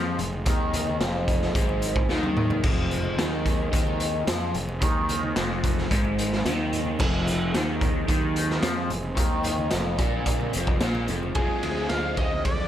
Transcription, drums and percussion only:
0.18 closed hi-hat medium
0.18 low conga medium
0.33 high conga medium
0.46 kick loud
0.46 closed hi-hat medium
0.46 low conga medium
0.73 closed hi-hat medium
0.73 high conga medium
0.73 low conga medium
0.87 high conga medium
1.01 snare loud
1.01 closed hi-hat medium
1.28 kick medium
1.28 closed hi-hat medium
1.28 low conga medium
1.42 snare soft
1.55 kick medium
1.55 closed hi-hat loud
1.69 high conga medium
1.82 closed hi-hat medium
1.96 kick medium
2.09 snare medium
2.23 high tom medium
2.23 high conga medium
2.37 mid tom medium
2.37 low conga medium
2.50 floor tom medium
2.50 high conga medium
2.63 kick loud
2.63 crash medium
2.63 low conga medium
2.91 closed hi-hat medium
2.91 high conga medium
3.05 high conga medium
3.19 snare loud
3.19 closed hi-hat medium
3.46 kick medium
3.46 closed hi-hat medium
3.46 low conga medium
3.73 kick medium
3.73 closed hi-hat loud
3.87 high conga medium
4.00 closed hi-hat medium
4.27 snare loud
4.27 closed hi-hat loud
4.54 closed hi-hat medium
4.54 low conga medium
4.69 high conga medium
4.82 kick loud
4.82 closed hi-hat loud
4.82 low conga medium
5.09 closed hi-hat medium
5.09 high conga medium
5.23 high conga medium
5.36 snare medium
5.36 closed hi-hat medium
5.64 kick medium
5.64 closed hi-hat medium
5.64 low conga medium
5.78 snare soft
5.91 kick medium
5.91 closed hi-hat loud
6.05 high conga medium
6.19 closed hi-hat medium
6.32 snare soft
6.46 snare loud
6.46 closed hi-hat loud
6.73 closed hi-hat medium
6.73 low conga medium
6.85 high conga medium
6.99 kick loud
6.99 crash loud
6.99 low conga medium
7.27 closed hi-hat medium
7.27 high conga medium
7.54 snare medium
7.54 closed hi-hat medium
7.81 kick medium
7.81 closed hi-hat medium
7.81 low conga medium
8.09 kick medium
8.09 closed hi-hat medium
8.22 high conga medium
8.36 closed hi-hat medium
8.50 snare soft
8.63 snare loud
8.63 closed hi-hat loud
8.90 closed hi-hat medium
8.90 low conga medium
9.03 high conga medium
9.17 kick loud
9.17 closed hi-hat loud
9.17 low conga medium
9.43 closed hi-hat medium
9.43 low conga medium
9.58 high conga medium
9.71 snare medium
9.71 closed hi-hat medium
9.98 kick medium
9.98 closed hi-hat medium
9.98 low conga medium
10.26 kick medium
10.26 closed hi-hat loud
10.41 high conga medium
10.53 closed hi-hat medium
10.67 kick medium
10.81 snare loud
10.81 closed hi-hat medium
10.95 high conga medium
11.08 closed hi-hat medium
11.23 high conga medium
11.35 kick loud
11.35 ride medium
11.63 ride medium
11.89 snare medium
11.89 ride medium
12.17 kick medium
12.17 ride medium
12.45 kick medium
12.45 ride medium

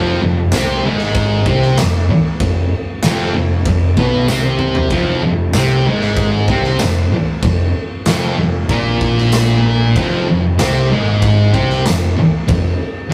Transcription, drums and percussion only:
0.52 snare loud
0.52 tambourine medium
0.52 crash medium
0.99 snare soft
1.15 kick loud
1.15 crash medium
1.46 kick medium
1.62 snare soft
1.77 snare loud
1.77 tambourine loud
1.77 crash medium
2.40 kick loud
2.40 crash medium
3.02 snare loud
3.02 tambourine loud
3.02 crash medium
3.66 kick loud
3.66 crash medium
3.97 kick medium
4.28 snare medium
4.28 tambourine loud
4.43 high tom medium
4.59 mid tom medium
4.75 floor tom medium
4.90 kick loud
4.90 crash medium
5.53 snare loud
5.53 tambourine loud
5.53 crash medium
6.01 snare soft
6.16 kick loud
6.16 crash medium
6.48 kick medium
6.64 snare soft
6.79 snare loud
6.79 tambourine medium
6.79 crash medium
7.43 kick loud
7.43 crash medium
8.06 snare loud
8.06 tambourine medium
8.06 crash medium
8.69 kick loud
8.69 crash medium
9.01 kick medium
9.18 snare soft
9.32 snare loud
9.32 tambourine loud
9.32 crash medium
9.96 kick loud
9.96 crash medium
10.59 snare loud
10.59 tambourine medium
10.59 crash medium
11.22 kick loud
11.22 crash medium
11.54 kick medium
11.70 snare soft
11.86 snare loud
11.86 tambourine loud
11.86 crash medium
12.48 kick loud
12.48 crash medium

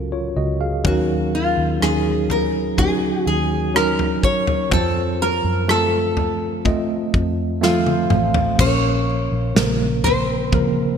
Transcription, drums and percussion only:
0.85 kick loud
0.85 floor tom medium
1.82 cross-stick medium
2.30 floor tom medium
2.78 kick medium
2.78 floor tom medium
3.76 cross-stick loud
3.99 floor tom medium
4.23 kick medium
4.47 floor tom medium
4.71 kick loud
4.71 floor tom medium
5.69 cross-stick loud
6.17 floor tom medium
6.65 kick medium
6.65 floor tom medium
7.14 kick medium
7.63 snare medium
7.87 high tom medium
8.10 mid tom medium
8.34 floor tom medium
8.59 kick loud
8.59 floor tom loud
8.59 crash loud
9.56 snare loud
10.04 floor tom medium
10.52 kick medium
10.52 floor tom medium

